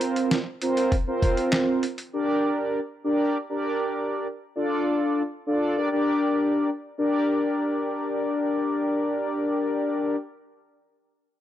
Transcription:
Already playing: analog polysynth C4 F4 A#4 C5
0.01 closed hi-hat
0.16 closed hi-hat
0.31 snare, closed hi-hat
0.62 analog polysynth C4 F4 A#4 C5, closed hi-hat
0.77 closed hi-hat
0.92 kick, closed hi-hat
1.07 analog polysynth C4 F4 A#4 C5
1.22 kick, closed hi-hat
1.37 closed hi-hat
1.53 snare, clap, closed hi-hat
1.83 closed hi-hat
1.98 closed hi-hat
2.13 analog polysynth D4 G4 A#4 D5
3.04 analog polysynth D4 G4 A#4 D5
3.50 analog polysynth D4 G4 A#4 D5
4.56 analog polysynth D4 F4 A4 D5
5.47 analog polysynth D4 F4 A4 D5
5.77 analog polysynth D4 G4 A#4 D5
5.92 analog polysynth D4 G4 A#4 D5
6.98 analog polysynth D4 G4 A#4 D5

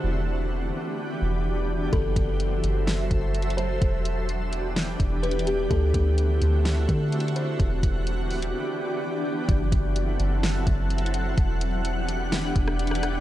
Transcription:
Already playing: ambient pad F#4
0.04 808-style bass E1, ambient pad E3 B3 D4 G4
1.22 808-style bass E1
1.93 808-style bass F#1, ambient pad F#3 A4 C5 E5, kalimba A4, kick, closed hi-hat
2.16 808-style bass F#1, kick, closed hi-hat
2.40 closed hi-hat
2.64 808-style bass F#1, closed hi-hat
2.87 snare, closed hi-hat
3.11 808-style bass F#1, kick, closed hi-hat
3.35 closed hi-hat
3.42 closed hi-hat
3.50 closed hi-hat
3.57 kalimba C5, closed hi-hat
3.82 808-style bass E1, ambient pad E3 B3 D4 G4, kick, closed hi-hat
4.05 closed hi-hat
4.29 closed hi-hat
4.53 closed hi-hat
4.76 snare, closed hi-hat
5.00 808-style bass E1, kick, closed hi-hat
5.23 kalimba B4, closed hi-hat
5.31 closed hi-hat
5.39 closed hi-hat
5.47 kalimba G4, closed hi-hat
5.70 808-style bass D2, ambient pad D3 A3 C4 E4 F#4, kalimba A4, kick, closed hi-hat
5.94 808-style bass D2, kick, closed hi-hat
6.18 closed hi-hat
6.42 808-style bass D2, closed hi-hat
6.65 snare, closed hi-hat
6.89 808-style bass D3, kick, closed hi-hat
7.12 closed hi-hat
7.20 closed hi-hat
7.28 closed hi-hat
7.36 kalimba C5, closed hi-hat
7.60 808-style bass E1, ambient pad E3 B3 D4 G4, kick, closed hi-hat
7.83 808-style bass E1, kick, closed hi-hat
8.07 closed hi-hat
8.31 808-style bass D1, closed hi-hat, open hi-hat
8.42 808-style bass E1, closed hi-hat
9.49 808-style bass F#1, ambient pad F#3 C4 E4 A4 F#5, kick, closed hi-hat
9.72 808-style bass F#1, kick, closed hi-hat
9.96 closed hi-hat
10.20 808-style bass F#1, closed hi-hat
10.43 snare, closed hi-hat
10.67 808-style bass F#1, kick, closed hi-hat
10.90 closed hi-hat
10.98 closed hi-hat
11.06 closed hi-hat
11.14 closed hi-hat
11.38 808-style bass E1, ambient pad E3 B3 D4 G4, kick, closed hi-hat
11.61 closed hi-hat
11.85 closed hi-hat
12.09 closed hi-hat
12.32 snare, closed hi-hat
12.56 808-style bass E1, kick, closed hi-hat
12.68 cross-stick
12.79 closed hi-hat
12.87 cross-stick, closed hi-hat
12.95 closed hi-hat
13.03 cross-stick, closed hi-hat

